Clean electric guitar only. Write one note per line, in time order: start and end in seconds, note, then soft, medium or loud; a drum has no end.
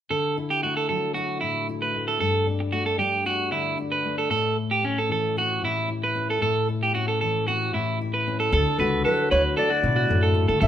0.11 0.36 A4 medium
0.50 0.63 G4 medium
0.63 0.76 F#4 medium
0.77 0.88 A4 medium
0.89 1.14 A4 medium
1.14 1.40 F#4 medium
1.41 1.67 E4 medium
1.82 2.07 B4 medium
2.08 2.19 A4 medium
2.21 2.46 A4 medium
2.60 muted clean electric guitar stroke medium
2.73 2.86 F#4 medium
2.86 2.98 A4 medium
2.99 3.24 G4 medium
3.26 3.51 F#4 medium
3.52 3.77 E4 medium
3.92 4.17 B4 medium
4.18 4.30 A4 medium
4.31 4.56 A4 medium
4.71 4.83 G4 medium
4.85 4.97 C#4 medium
4.98 5.10 A4 medium
5.12 5.36 A4 medium
5.38 5.62 F#4 medium
5.65 5.89 E4 medium
6.04 6.28 B4 medium
6.30 6.41 A4 medium
6.42 6.67 A4 medium
6.83 6.94 G4 medium
6.95 7.07 F#4 medium
7.08 7.20 A4 medium
7.21 7.46 A4 medium
7.48 7.72 F#4 medium
7.74 7.98 E4 medium
8.14 8.38 B4 medium
8.40 8.51 A4 medium
8.53 8.77 A4 medium
8.80 9.03 B4 medium
9.05 9.29 A4 medium
9.31 9.55 B4 medium
9.57 9.69 A4 medium
9.70 9.95 F#4 medium
9.96 10.21 F#4 medium
10.23 10.47 A4 medium
10.48 10.59 A4 medium
10.61 10.68 A4 medium